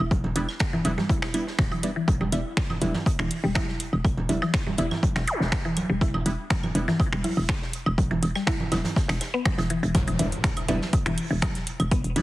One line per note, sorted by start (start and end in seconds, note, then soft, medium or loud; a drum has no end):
0.11 0.22 E1 loud
0.11 kick loud
0.11 closed hi-hat medium
0.11 high conga medium
0.24 0.33 E1 medium
0.24 low conga medium
0.36 0.46 E1 medium
0.36 0.47 G3 medium
0.36 0.47 B3 medium
0.36 0.47 D4 medium
0.36 0.47 E4 loud
0.36 closed hi-hat medium
0.36 high woodblock soft
0.48 snare soft
0.48 claves medium
0.59 finger snap medium
0.59 kick loud
0.59 snare loud
0.59 closed hi-hat medium
0.73 0.79 E3 medium
0.73 low conga medium
0.85 0.95 E1 medium
0.85 0.92 G3 loud
0.85 0.92 B3 medium
0.85 0.92 D4 medium
0.85 0.92 E4 loud
0.85 closed hi-hat medium
0.85 high conga medium
0.85 high woodblock medium
0.98 1.03 G3 medium
0.98 snare soft
0.98 low conga medium
1.09 1.16 E4 medium
1.09 kick loud
1.09 closed hi-hat medium
1.22 finger snap medium
1.22 snare medium
1.22 high woodblock soft
1.34 1.46 G3 medium
1.34 1.46 B3 medium
1.34 1.46 D4 medium
1.34 1.46 E4 medium
1.34 closed hi-hat medium
1.34 claves medium
1.47 snare medium
1.59 1.69 D1 medium
1.59 finger snap medium
1.59 kick loud
1.59 snare loud
1.59 closed hi-hat medium
1.59 high conga medium
1.72 1.77 E3 medium
1.72 closed hi-hat soft
1.72 high woodblock medium
1.83 1.90 G3 loud
1.83 1.90 B3 medium
1.83 1.90 D4 medium
1.83 1.90 E4 loud
1.83 closed hi-hat medium
1.96 2.05 E3 medium
2.08 2.18 E1 loud
2.08 kick loud
2.08 closed hi-hat medium
2.08 high conga medium
2.21 2.30 E1 medium
2.21 2.26 G3 medium
2.21 low conga medium
2.21 high woodblock soft
2.32 2.43 E1 medium
2.32 2.40 G3 medium
2.32 2.40 B3 medium
2.32 2.40 D4 medium
2.32 2.39 E4 medium
2.32 2.40 E4 medium
2.32 closed hi-hat medium
2.32 claves medium
2.57 finger snap medium
2.57 kick loud
2.57 snare loud
2.57 closed hi-hat medium
2.70 low conga medium
2.70 high woodblock medium
2.81 2.92 E1 medium
2.81 2.93 G3 medium
2.81 2.93 B3 medium
2.81 2.93 D4 medium
2.81 2.93 E4 loud
2.81 closed hi-hat medium
2.81 high conga medium
2.94 snare medium
2.94 low conga medium
3.06 kick loud
3.06 closed hi-hat medium
3.06 high woodblock soft
3.19 3.29 E1 medium
3.19 3.25 E3 loud
3.19 finger snap medium
3.19 closed hi-hat soft
3.19 claves medium
3.31 closed hi-hat medium
3.31 open hi-hat medium
3.44 3.53 E1 loud
3.44 3.49 G3 medium
3.55 3.62 E4 medium
3.55 finger snap medium
3.55 kick loud
3.55 snare loud
3.55 closed hi-hat medium
3.55 high conga medium
3.55 high woodblock medium
3.68 snare soft
3.80 closed hi-hat medium
3.93 4.02 E1 medium
3.93 high woodblock soft
4.05 4.15 E1 loud
4.05 kick loud
4.05 closed hi-hat medium
4.05 claves medium
4.17 4.27 E1 medium
4.17 low conga medium
4.29 4.40 E1 medium
4.29 4.41 G3 medium
4.29 4.41 B3 medium
4.29 4.41 D4 medium
4.29 4.41 E4 loud
4.29 closed hi-hat medium
4.29 high conga medium
4.42 4.48 E3 loud
4.42 snare soft
4.42 high woodblock medium
4.54 finger snap medium
4.54 kick loud
4.54 snare loud
4.54 closed hi-hat medium
4.67 4.72 G3 medium
4.67 low conga medium
4.78 4.89 E1 medium
4.78 4.86 G3 loud
4.78 4.86 B3 medium
4.78 4.86 D4 medium
4.78 4.86 E4 loud
4.78 4.85 E4 medium
4.78 closed hi-hat medium
4.78 high woodblock soft
4.91 snare soft
4.91 low conga medium
4.91 claves medium
5.03 kick loud
5.03 closed hi-hat medium
5.03 high conga medium
5.16 5.25 E1 medium
5.16 finger snap medium
5.16 snare medium
5.27 closed hi-hat medium
5.27 zap medium
5.27 high woodblock medium
5.40 5.50 E1 loud
5.40 snare soft
5.52 finger snap medium
5.52 kick loud
5.52 snare loud
5.52 closed hi-hat medium
5.64 5.71 E3 loud
5.64 closed hi-hat soft
5.64 high woodblock soft
5.77 closed hi-hat medium
5.77 high conga medium
5.77 claves medium
5.90 5.99 E1 medium
5.90 5.95 G3 medium
6.01 6.12 E1 loud
6.01 6.07 E4 medium
6.01 kick loud
6.01 closed hi-hat medium
6.14 6.24 E1 medium
6.14 low conga medium
6.14 high woodblock medium
6.26 6.36 E1 medium
6.26 6.33 G3 medium
6.26 6.33 B3 medium
6.26 6.33 D4 medium
6.26 6.33 E4 medium
6.26 closed hi-hat medium
6.50 finger snap medium
6.50 kick loud
6.50 snare loud
6.50 closed hi-hat medium
6.50 high conga medium
6.50 high woodblock soft
6.63 low conga medium
6.63 claves medium
6.75 6.85 E1 medium
6.75 6.87 G3 loud
6.75 6.87 B3 medium
6.75 6.87 D4 medium
6.75 6.87 E4 loud
6.75 closed hi-hat medium
6.88 6.94 E3 loud
6.88 snare medium
6.88 low conga medium
7.00 kick loud
7.00 closed hi-hat medium
7.00 high woodblock medium
7.12 7.22 E1 medium
7.12 7.18 G3 medium
7.12 finger snap medium
7.12 closed hi-hat soft
7.24 7.30 E4 medium
7.24 closed hi-hat medium
7.24 open hi-hat medium
7.24 high conga medium
7.37 7.47 E1 loud
7.37 high woodblock soft
7.49 finger snap medium
7.49 kick loud
7.49 snare loud
7.49 claves medium
7.62 snare soft
7.73 closed hi-hat medium
7.86 7.96 E1 medium
7.86 high woodblock medium
7.98 8.08 E1 loud
7.98 kick loud
7.98 closed hi-hat medium
7.98 high conga medium
8.11 8.20 E1 medium
8.11 8.17 E3 loud
8.11 low conga medium
8.23 8.33 E1 loud
8.23 closed hi-hat medium
8.23 high woodblock soft
8.35 8.41 G3 medium
8.35 snare soft
8.35 claves medium
8.47 8.53 E4 medium
8.47 finger snap medium
8.47 kick loud
8.47 snare loud
8.47 closed hi-hat medium
8.60 low conga medium
8.72 8.82 E1 medium
8.72 8.79 G3 loud
8.72 8.79 B3 medium
8.72 8.79 D4 medium
8.72 8.79 E4 loud
8.72 snare loud
8.72 closed hi-hat medium
8.72 high conga medium
8.72 high woodblock medium
8.84 snare medium
8.84 closed hi-hat medium
8.84 low conga medium
8.96 kick loud
8.96 snare loud
8.96 closed hi-hat medium
9.08 9.19 E1 medium
9.08 finger snap medium
9.08 snare loud
9.08 closed hi-hat medium
9.08 high woodblock soft
9.21 snare loud
9.21 closed hi-hat medium
9.21 claves medium
9.34 9.39 B3 loud
9.45 finger snap medium
9.45 kick loud
9.45 closed hi-hat medium
9.45 high conga medium
9.58 9.78 E1 medium
9.58 9.64 E3 medium
9.58 snare loud
9.58 closed hi-hat medium
9.58 high woodblock medium
9.70 9.76 E3 medium
9.70 closed hi-hat medium
9.83 9.92 E1 loud
9.83 9.86 E3 medium
9.83 closed hi-hat medium
9.95 10.05 E1 loud
9.95 kick loud
9.95 closed hi-hat medium
9.95 impact medium
9.95 high conga medium
9.95 claves medium
10.08 10.17 E1 medium
10.08 10.11 E3 medium
10.08 closed hi-hat soft
10.08 high woodblock soft
10.19 10.30 E1 medium
10.19 10.27 G3 medium
10.19 10.27 B3 medium
10.19 10.27 D4 medium
10.19 10.27 E4 medium
10.19 closed hi-hat medium
10.32 closed hi-hat soft
10.44 finger snap medium
10.44 kick loud
10.44 snare loud
10.44 closed hi-hat medium
10.57 closed hi-hat soft
10.57 claves medium
10.57 high woodblock medium
10.68 10.79 E1 loud
10.68 10.80 G3 loud
10.68 10.75 B3 medium
10.68 10.80 B3 medium
10.68 10.80 D4 medium
10.68 10.80 E4 loud
10.68 closed hi-hat medium
10.68 high conga medium
10.68 low conga medium
10.81 snare medium
10.93 kick loud
10.93 closed hi-hat medium
10.93 high woodblock soft
11.06 11.15 E1 medium
11.06 11.12 E3 loud
11.06 finger snap medium
11.06 closed hi-hat soft
11.06 low conga loud
11.18 closed hi-hat medium
11.18 open hi-hat medium
11.18 claves medium
11.31 11.40 E1 loud
11.31 11.34 E3 medium
11.42 finger snap loud
11.42 kick loud
11.42 snare loud
11.42 closed hi-hat medium
11.42 high conga medium
11.42 high woodblock medium
11.55 snare soft
11.55 closed hi-hat soft
11.67 closed hi-hat medium
11.80 11.89 E1 medium
11.80 closed hi-hat soft
11.80 claves medium
11.80 high woodblock soft
11.91 12.02 E1 loud
11.91 11.98 B3 medium
11.91 kick loud
11.91 closed hi-hat medium
12.04 12.14 E1 medium
12.04 closed hi-hat soft
12.16 12.22 E1 medium
12.16 12.22 G3 medium
12.16 12.22 B3 medium
12.16 12.22 D4 medium
12.16 12.22 E4 loud
12.16 closed hi-hat loud
12.16 closed hi-hat medium
12.16 high conga medium